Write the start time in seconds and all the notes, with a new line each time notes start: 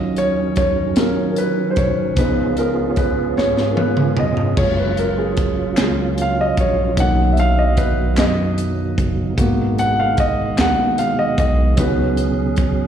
Already playing: D#2 D#3 F#3 C#4 F4 D#5
0.16 C#5, closed hi-hat
0.56 C#5, kick, closed hi-hat
0.96 A#2 F#3 C#4 F4 A#4, snare, closed hi-hat
1.31 A#4
1.36 B4, closed hi-hat
1.71 C5
1.76 B1 C#5, kick, closed hi-hat
2.16 C#2 F3 B3 C#4 D#4 F4 G#4 B4, kick, closed hi-hat
2.57 A#4, closed hi-hat
2.91 C#5
2.96 B4, kick, closed hi-hat
3.37 G#2 C#5, snare
3.57 snare
3.71 A#4
3.77 B4, high tom
3.97 mid tom
4.17 F1 D#5, mid tom
4.37 floor tom
4.56 F#1 F#3 G#3 A#3 C#4 F4 C#5, kick, crash
4.79 B4
4.97 A#4, closed hi-hat
5.18 G#4
5.37 kick, closed hi-hat
5.77 C#2 G#3 A#3 F4, snare, clap, closed hi-hat
6.18 F5, closed hi-hat
6.41 D#5
6.57 A#1 C#5, kick, closed hi-hat
6.97 B1 B2 D#3 A#3 C#4 D#4 F#5, kick, closed hi-hat
7.33 E5
7.37 F5, closed hi-hat
7.59 D#5
7.77 B4, kick, closed hi-hat
8.17 F#2 D#5, snare, clap, closed hi-hat
8.58 closed hi-hat
8.98 F#1, kick, closed hi-hat
9.37 G#1 D#3 G#3 A#3 B3 F#4, kick, closed hi-hat
9.79 F#5, closed hi-hat
10.00 F5
10.17 D#5, kick, closed hi-hat
10.58 D#2 A#3 B3 F#4 F#5, snare, clap, closed hi-hat
10.98 F5, closed hi-hat
11.19 D#5
11.38 B1 D#5, kick, closed hi-hat
11.76 C#2 F#3 B3 C#4 D#4 F#4 G#4 B4, kick, closed hi-hat
12.17 closed hi-hat
12.56 kick, closed hi-hat